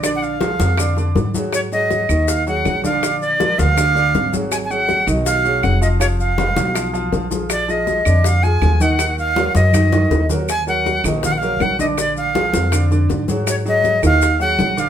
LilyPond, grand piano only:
\new Staff \with { instrumentName = "Grand piano" } { \time 4/4 \key ees \minor \tempo 4 = 161 <d d' d''>4 <f f' aes'>4 <d d' d''>8 <d d' d''>4 <ges ges' aes'>8~ | <ges ges' aes'>8 <ges ges' aes'>4 <ees ees' ees''>4 <ges ges' aes'>4 <d d' d''>8 | <d d' d''>4 <f f' bes'>4 <d d' d''>8 <d d' d''>4 <ges ges' aes'>8~ | <ges ges' aes'>8 <ges ges' aes'>4 <ees ees' ees''>4 <ges ges' aes'>4 <f f' f''>8 |
<f f' f''>4 <aes aes' ces''>4 <f f' f''>8 <f f' f''>4 <f f' aes'>8~ | <f f' aes'>8 <f f' aes'>4 <d d' d''>4 <f f' aes'>4 <ees ees' ees''>8 | <ees ees' ees''>4 <ges ges' bes'>4 <ees ees' ees''>8 <ees ees' ees''>4 <ges ges' bes'>8 | r8 <ges ges' bes'>4 <ees ees' ees''>4 <ges ges' bes'>4 <d d' d''>8 |
<d d' d''>4 <f f' aes'>4 <d d' d''>8 <d d' d''>4 <ges ges' aes'>8~ | <ges ges' aes'>8 <ges ges' aes'>4 <ees ees' ees''>4 <ges ges' aes'>4 <d d' d''>8 | }